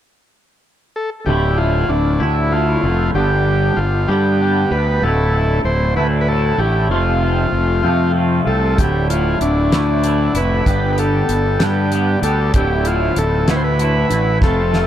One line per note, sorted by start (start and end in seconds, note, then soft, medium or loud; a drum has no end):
0.96 1.10 A4 medium
1.26 1.82 D1 medium
1.26 1.89 D2 medium
1.26 1.90 A2 medium
1.26 1.60 D3 medium
1.26 1.58 A3 medium
1.26 1.57 E4 medium
1.26 1.59 G4 medium
1.58 2.20 D3 soft
1.58 2.20 A3 medium
1.58 2.19 E4 medium
1.58 1.90 F4 medium
1.89 2.17 D1 medium
1.89 2.22 D4 medium
2.20 2.76 D2 medium
2.20 2.85 D2 medium
2.20 2.50 A2 medium
2.20 2.51 D3 medium
2.20 2.52 A3 medium
2.20 2.53 E4 medium
2.51 3.12 A2 medium
2.51 2.85 D3 medium
2.51 2.83 A3 medium
2.51 2.81 E4 medium
2.51 3.11 F4 medium
2.82 3.11 F1 medium
2.82 3.14 D3 soft
2.82 3.13 A3 medium
2.82 3.13 E4 medium
3.14 3.70 G1 medium
3.14 3.77 G2 medium
3.14 3.78 D3 medium
3.14 3.48 G3 medium
3.14 3.47 B3 medium
3.14 3.46 D4 medium
3.14 3.80 G4 medium
3.14 3.44 G4 medium
3.45 4.10 G3 soft
3.45 4.09 B3 soft
3.45 4.08 D4 medium
3.45 4.07 G4 medium
3.77 4.05 G1 medium
3.77 4.09 F4 medium
4.08 4.64 G2 medium
4.08 4.73 D3 medium
4.08 4.38 G3 medium
4.08 4.40 B3 medium
4.08 4.41 D4 medium
4.08 4.73 G4 medium
4.08 4.41 G4 medium
4.12 4.73 G2 medium
4.40 4.73 G3 medium
4.40 4.72 B3 medium
4.40 4.71 D4 medium
4.40 4.70 G4 medium
4.71 4.99 D2 medium
4.71 5.03 G3 medium
4.71 5.02 B3 soft
4.71 5.01 D4 medium
4.71 5.01 G4 medium
4.71 5.04 B4 medium
5.02 5.58 D1 medium
5.02 5.66 D2 medium
5.02 5.66 A2 medium
5.02 5.37 D3 medium
5.02 5.36 A3 medium
5.02 5.34 E4 medium
5.02 5.62 A4 medium
5.35 5.98 D3 soft
5.35 5.98 A3 medium
5.35 5.96 E4 medium
5.64 5.92 D1 medium
5.64 5.94 C5 medium
5.96 6.51 D2 medium
5.96 6.28 D3 medium
5.96 6.30 A3 medium
5.96 6.30 E4 medium
5.96 6.07 B4 medium
6.00 6.61 D2 medium
6.00 6.27 A2 medium
6.21 6.28 B4 medium
6.28 6.89 A2 medium
6.28 6.61 D3 medium
6.28 6.60 A3 medium
6.28 6.57 E4 medium
6.28 6.61 A4 medium
6.58 6.86 A1 medium
6.58 6.90 D3 medium
6.58 6.91 A3 medium
6.58 6.88 E4 medium
6.58 6.88 G4 medium
6.89 7.45 F1 medium
6.89 7.53 F2 medium
6.89 7.53 C3 medium
6.89 7.24 F3 medium
6.89 7.23 A3 medium
6.89 7.21 C4 medium
6.89 8.12 F4 medium
6.89 7.20 F4 medium
7.21 7.84 F3 soft
7.21 7.84 A3 medium
7.21 7.83 C4 medium
7.21 7.82 F4 medium
7.52 7.80 F1 medium
7.83 8.39 F2 medium
7.83 8.48 F2 medium
7.83 8.48 C3 medium
7.83 8.13 F3 medium
7.83 8.14 A3 medium
7.83 8.15 C4 medium
7.83 8.16 F4 medium
8.14 8.48 F3 medium
8.14 8.47 A3 medium
8.14 8.46 C4 medium
8.14 8.44 F4 medium
8.45 8.74 C2 medium
8.45 8.78 F3 soft
8.45 8.77 A3 medium
8.45 8.76 C4 medium
8.45 8.76 F4 medium
8.45 8.80 A4 medium
8.78 9.34 D1 medium
8.78 9.41 D2 medium
8.78 9.41 A2 medium
8.78 9.12 D3 medium
8.78 9.10 A3 medium
8.78 9.08 E4 medium
8.78 9.08 G4 medium
8.78 kick medium
8.78 closed hi-hat medium
9.10 9.72 D3 medium
9.10 9.72 A3 medium
9.10 9.71 E4 medium
9.10 9.39 F4 medium
9.10 closed hi-hat medium
9.41 9.69 D1 medium
9.41 10.38 D4 medium
9.41 closed hi-hat soft
9.72 10.27 D2 medium
9.72 10.37 D2 medium
9.72 10.01 A2 medium
9.72 10.02 D3 medium
9.72 10.03 A3 medium
9.72 10.04 E4 medium
9.72 snare medium
9.72 closed hi-hat medium
10.02 10.64 A2 medium
10.02 10.37 D3 medium
10.02 10.35 A3 medium
10.02 10.34 E4 medium
10.02 closed hi-hat soft
10.34 10.62 F1 medium
10.34 10.65 D3 medium
10.34 10.65 A3 medium
10.34 10.64 E4 medium
10.34 10.91 B4 medium
10.34 closed hi-hat soft
10.65 11.21 G1 medium
10.65 11.28 G2 medium
10.65 11.29 D3 medium
10.65 10.98 G3 medium
10.65 10.98 B3 medium
10.65 10.97 D4 medium
10.65 10.95 G4 medium
10.65 kick medium
10.65 closed hi-hat medium
10.93 11.58 G4 medium
10.93 10.99 B4 medium
10.97 11.60 G3 medium
10.97 11.59 B3 medium
10.97 11.59 D4 medium
10.97 11.63 A4 medium
10.97 closed hi-hat medium
11.29 11.57 G1 medium
11.29 closed hi-hat soft
11.59 12.15 G2 medium
11.59 12.24 G2 medium
11.59 12.23 D3 medium
11.59 11.90 G3 medium
11.59 11.91 B3 medium
11.59 11.92 D4 medium
11.59 11.93 G4 medium
11.59 12.20 G4 medium
11.59 snare medium
11.59 closed hi-hat medium
11.91 12.25 G3 medium
11.91 12.24 B3 medium
11.91 12.23 D4 medium
11.91 12.21 G4 medium
11.91 closed hi-hat soft
12.22 12.50 D2 medium
12.22 12.54 G3 soft
12.22 12.53 B3 medium
12.22 12.53 D4 medium
12.22 12.52 G4 medium
12.22 12.52 A4 medium
12.22 closed hi-hat soft
12.54 13.09 D1 medium
12.54 13.17 D2 medium
12.54 13.17 A2 medium
12.54 12.87 D3 medium
12.54 12.86 A3 medium
12.54 12.87 G4 medium
12.54 kick medium
12.54 closed hi-hat medium
12.58 12.84 E4 medium
12.85 13.48 D3 medium
12.85 13.48 A3 medium
12.85 13.46 E4 medium
12.85 13.18 F4 medium
12.85 closed hi-hat medium
13.16 13.44 D1 medium
13.16 13.50 A4 medium
13.16 closed hi-hat medium
13.48 14.03 D2 medium
13.48 14.12 D2 medium
13.48 13.77 A2 medium
13.48 13.79 D3 medium
13.48 13.80 A3 medium
13.48 13.80 E4 medium
13.48 13.56 B4 medium
13.48 snare medium
13.48 closed hi-hat medium
13.56 13.63 C5 medium
13.64 14.39 B4 medium
13.78 14.39 A2 medium
13.78 14.12 D3 medium
13.78 14.12 A3 medium
13.78 14.09 E4 medium
13.78 closed hi-hat medium
14.10 14.38 A1 medium
14.10 14.41 D3 medium
14.10 14.43 A3 medium
14.10 14.40 E4 medium
14.10 closed hi-hat medium
14.41 14.87 F1 medium
14.41 14.87 F2 medium
14.41 14.87 C3 medium
14.41 14.74 F3 medium
14.41 14.74 A3 medium
14.41 14.73 C4 medium
14.41 14.71 F4 medium
14.41 14.87 A4 medium
14.41 kick loud
14.41 snare soft
14.72 14.87 F3 medium
14.72 14.87 A3 medium
14.72 14.87 C4 medium
14.72 14.87 F4 medium
14.72 snare medium